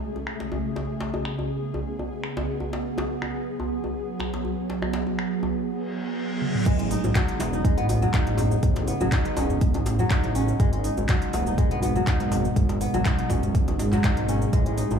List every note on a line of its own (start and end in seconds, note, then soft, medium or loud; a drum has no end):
0.00 2.69 C#3 medium
0.00 0.74 A3 medium
0.00 6.62 G#4 medium
0.16 djembe tone medium
0.27 finger snap loud
0.40 djembe slap medium
0.52 djembe tone medium
0.76 6.62 B3 medium
0.76 djembe slap medium
0.76 djembe tone medium
1.00 djembe slap medium
1.14 djembe tone medium
1.25 finger snap loud
1.39 djembe tone medium
1.74 djembe tone medium
1.99 djembe tone medium
2.24 finger snap medium
2.37 djembe slap medium
2.37 djembe tone medium
2.60 djembe tone medium
2.73 6.62 F#3 medium
2.73 djembe slap medium
2.98 djembe slap medium
2.98 djembe tone medium
3.22 finger snap loud
3.22 djembe tone medium
3.60 djembe tone medium
3.84 djembe tone medium
4.20 finger snap medium
4.20 djembe tone medium
4.34 djembe slap medium
4.45 djembe tone medium
4.70 djembe slap medium
4.82 finger snap medium
4.82 djembe tone medium
4.93 djembe slap loud
5.07 djembe tone medium
5.19 finger snap loud
5.43 djembe tone medium
5.68 reverse cymbal medium
6.42 high tom medium
6.55 mid tom medium
6.66 6.96 A1 loud
6.66 10.56 C#3 medium
6.66 6.78 G#3 loud
6.66 10.56 G#4 loud
6.66 kick loud
6.66 closed hi-hat medium
6.66 crash loud
6.66 shaker soft
6.79 7.63 G#3 medium
6.79 closed hi-hat soft
6.91 7.53 D#4 medium
6.91 open hi-hat medium
6.91 shaker medium
7.04 7.11 A1 medium
7.04 djembe tone medium
7.04 shaker medium
7.15 8.01 F#3 medium
7.15 finger snap loud
7.15 kick loud
7.15 clap loud
7.15 closed hi-hat medium
7.15 shaker soft
7.28 closed hi-hat soft
7.40 7.79 E1 medium
7.40 7.77 B3 medium
7.40 open hi-hat medium
7.40 djembe slap medium
7.40 djembe tone medium
7.40 shaker loud
7.53 8.13 D#4 medium
7.53 shaker medium
7.64 9.98 G#3 medium
7.64 kick loud
7.64 closed hi-hat medium
7.64 shaker soft
7.77 8.07 A1 loud
7.77 7.89 B3 loud
7.77 closed hi-hat soft
7.89 8.87 B3 medium
7.89 open hi-hat medium
7.89 djembe tone medium
7.89 shaker medium
8.02 8.99 F#3 loud
8.02 mid tom medium
8.02 shaker medium
8.14 9.12 D#4 loud
8.14 finger snap loud
8.14 kick loud
8.14 clap loud
8.14 closed hi-hat medium
8.14 shaker soft
8.27 8.56 A1 loud
8.27 closed hi-hat soft
8.38 mid tom medium
8.38 open hi-hat medium
8.38 djembe slap medium
8.38 shaker loud
8.51 shaker medium
8.63 8.93 A1 loud
8.63 kick loud
8.63 closed hi-hat medium
8.63 mid tom medium
8.63 shaker soft
8.76 closed hi-hat soft
8.76 djembe slap medium
8.88 9.25 B3 medium
8.88 open hi-hat medium
8.88 shaker medium
9.01 9.08 A1 medium
9.01 9.98 F#3 loud
9.01 djembe tone medium
9.01 shaker medium
9.12 10.10 D#4 loud
9.12 finger snap loud
9.12 kick loud
9.12 clap loud
9.12 closed hi-hat medium
9.12 shaker soft
9.25 11.12 B3 medium
9.25 closed hi-hat soft
9.37 9.76 E1 medium
9.37 10.35 C#4 medium
9.37 open hi-hat medium
9.37 djembe slap medium
9.37 djembe tone medium
9.37 shaker loud
9.50 mid tom medium
9.50 shaker medium
9.61 kick loud
9.61 closed hi-hat medium
9.61 shaker soft
9.74 10.04 A1 loud
9.74 closed hi-hat soft
9.74 djembe tone loud
9.86 open hi-hat medium
9.86 djembe slap medium
9.86 shaker loud
9.99 10.65 F#3 loud
9.99 mid tom medium
9.99 shaker medium
10.10 10.84 D#4 loud
10.10 finger snap loud
10.10 kick loud
10.10 clap medium
10.10 closed hi-hat medium
10.10 shaker soft
10.24 10.53 A1 loud
10.24 closed hi-hat soft
10.35 12.09 C#4 medium
10.35 open hi-hat medium
10.35 shaker loud
10.48 shaker medium
10.60 10.90 G#1 loud
10.60 14.49 B2 medium
10.60 14.49 G#3 medium
10.60 10.72 G#3 loud
10.60 12.54 F#4 medium
10.60 kick loud
10.60 closed hi-hat medium
10.60 shaker soft
10.73 11.57 G#3 medium
10.73 closed hi-hat soft
10.84 11.46 D#4 medium
10.84 open hi-hat medium
10.84 shaker loud
10.97 11.05 G#1 medium
10.97 djembe tone medium
10.97 shaker medium
11.09 11.94 F#3 medium
11.09 finger snap loud
11.09 kick loud
11.09 clap loud
11.09 closed hi-hat medium
11.09 shaker soft
11.22 closed hi-hat soft
11.33 11.73 D#1 medium
11.33 11.71 B3 medium
11.33 open hi-hat medium
11.33 djembe slap medium
11.33 djembe tone medium
11.33 shaker loud
11.47 12.07 D#4 medium
11.47 shaker medium
11.58 13.92 G#3 medium
11.58 kick loud
11.58 closed hi-hat medium
11.58 shaker soft
11.71 12.00 G#1 loud
11.71 11.82 B3 loud
11.71 closed hi-hat soft
11.82 12.81 B3 medium
11.82 open hi-hat medium
11.82 djembe tone medium
11.82 shaker loud
11.96 12.93 F#3 loud
11.96 mid tom medium
11.96 shaker medium
12.07 13.05 D#4 loud
12.07 finger snap loud
12.07 kick loud
12.07 clap loud
12.07 closed hi-hat medium
12.07 shaker soft
12.20 12.49 G#1 loud
12.20 closed hi-hat soft
12.32 mid tom loud
12.32 open hi-hat medium
12.32 djembe slap medium
12.32 shaker loud
12.45 shaker medium
12.56 12.86 G#1 loud
12.56 14.51 G#4 medium
12.56 kick loud
12.56 closed hi-hat medium
12.56 mid tom medium
12.56 shaker soft
12.69 closed hi-hat soft
12.69 djembe slap medium
12.81 13.18 B3 medium
12.81 open hi-hat medium
12.81 shaker loud
12.94 13.01 G#1 medium
12.94 13.91 F#3 loud
12.94 closed hi-hat soft
12.94 djembe tone medium
12.94 shaker medium
13.05 14.04 D#4 loud
13.05 finger snap loud
13.05 kick loud
13.05 clap loud
13.05 closed hi-hat medium
13.05 shaker soft
13.19 14.99 B3 medium
13.19 closed hi-hat soft
13.30 13.69 D#1 medium
13.30 14.28 C#4 medium
13.30 kick medium
13.30 open hi-hat medium
13.30 djembe slap medium
13.30 djembe tone medium
13.30 shaker loud
13.43 closed hi-hat soft
13.43 mid tom loud
13.43 shaker medium
13.55 kick loud
13.55 closed hi-hat medium
13.55 shaker soft
13.68 13.97 G#1 loud
13.68 closed hi-hat soft
13.68 djembe tone loud
13.79 open hi-hat medium
13.79 djembe slap medium
13.79 shaker loud
13.92 14.58 F#3 loud
13.92 clap soft
13.92 mid tom medium
13.92 shaker medium
14.04 14.77 D#4 loud
14.04 finger snap loud
14.04 kick loud
14.04 clap loud
14.04 closed hi-hat medium
14.04 shaker soft
14.17 14.46 G#1 loud
14.17 closed hi-hat soft
14.29 14.99 C#4 medium
14.29 open hi-hat medium
14.29 shaker loud
14.42 shaker medium
14.53 14.83 A1 loud
14.53 14.99 C#3 medium
14.53 14.65 G#3 loud
14.53 14.99 G#4 loud
14.53 kick loud
14.53 closed hi-hat medium
14.53 shaker soft
14.66 14.99 G#3 medium
14.66 closed hi-hat soft
14.78 14.99 D#4 medium
14.78 open hi-hat medium
14.78 shaker medium
14.91 14.98 A1 medium
14.91 djembe tone medium
14.91 shaker medium